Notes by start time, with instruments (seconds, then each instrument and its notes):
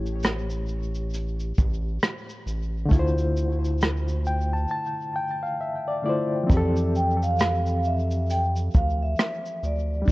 Already playing: analog synth bass A1, reed electric piano A2 A3 E4 G4 C#5
0.06 shaker
0.23 cross-stick, closed hi-hat, shaker
0.50 shaker
0.68 shaker
0.95 shaker
1.14 closed hi-hat, shaker
1.40 shaker
1.58 analog synth bass A1, kick, shaker
2.03 cross-stick, closed hi-hat, shaker
2.29 shaker
2.46 analog synth bass A1, shaker
2.85 reed electric piano D3 A3
2.91 analog synth bass D2, reed electric piano E4, kick, closed hi-hat, shaker
2.96 reed electric piano F4 C5
3.18 shaker
3.37 shaker
3.65 shaker
3.81 cross-stick, closed hi-hat, shaker
4.08 shaker
4.26 reed electric piano G5, shaker
4.53 reed electric piano A5
4.71 reed electric piano A5
5.16 reed electric piano G5
5.43 reed electric piano F5
5.61 reed electric piano E5
5.88 reed electric piano D5
6.02 reed electric piano D3 A3 E4 D5
6.07 reed electric piano F4 C5
6.43 reed electric piano F3 C4
6.50 analog synth bass F2, reed electric piano E3, kick, closed hi-hat, shaker
6.54 reed electric piano G4 A4
6.76 shaker
6.95 vibraphone G5, shaker
7.23 vibraphone F5, shaker
7.39 cross-stick, closed hi-hat, shaker
7.66 shaker
7.85 vibraphone E5, shaker
8.11 shaker
8.30 vibraphone G5, closed hi-hat, shaker
8.56 shaker
8.74 analog synth bass D2, vibraphone F5, kick, shaker
9.02 vibraphone E5
9.19 cross-stick, closed hi-hat, shaker
9.46 shaker
9.63 analog synth bass D2, vibraphone D5, shaker
10.02 reed electric piano G3 D4
10.08 analog synth bass G1, kick, closed hi-hat, shaker